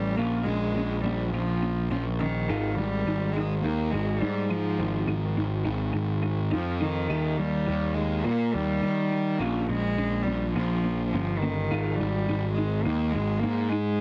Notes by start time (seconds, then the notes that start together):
Already playing: A1 D#3 F3 G3
0.16 A#1 A#3 C#4 F4
0.43 A#1 G#3
0.48 C#4
0.74 A#1 A#3 C#4
1.01 A#1 G3 A#3
1.06 C#4
1.31 A#1 F3 A#3 C#4
1.62 A#3 C#4
1.90 A#1 F3 A#3 C#4
2.19 D#3 A#3 C#4
2.49 G#1 G#3 D#4 F4
2.75 G#1 G3 G#3 D#4
3.06 G#1 G#3 D#4
3.33 G#3
3.37 D#4
3.61 D#2 G#3 A#3 D#4
3.91 G#1 G#3 D#4
4.20 G#2 G3 G#3 D#4
4.49 F3 G#3 D#4
4.80 G#1 G#3 D#4
5.07 G#1 G#3 D#4
5.37 G#1 G#3 D#4
5.65 G#1 G#3 D#4
5.93 G#1 G#3 D#4
6.22 G#3 D#4
6.51 F2 F3 G#3 D#4
6.80 D#3 G#3 D#4
7.08 D#2 D#3 G3 D#4
7.37 D#2 D#3 G3
7.66 D#2 D#3 G3
7.94 D#3 G3 G#3
8.24 A#2 D#3 G3 A#3
8.52 D#2 D#3 G3
8.82 D#3 G3
9.11 D#3 G3
9.38 A#1 A#3 C#4 F4
9.67 A#1 G#3 A#3 C#4
9.98 A#1 A#3 C#4
10.23 G3 A#3
10.27 A#1 C#4
10.51 F3
10.55 A#1 A#3 C#4
10.84 A#3 C#4
11.09 F3
11.14 G1 A#3 C#4
11.39 D#3 A#3
11.43 C#4
11.71 G#1 G#3 D#4 F4
11.95 G3
12.00 G#1 G#3 D#4
12.28 G#1 G#3 D#4
12.53 G#3
12.58 G#3 D#4
12.83 D#2 G#3 A#3 D#4
13.11 G#1 G#3
13.16 D#4
13.39 G#3 A#3
13.44 G#2 D#4
13.69 G#3 D#4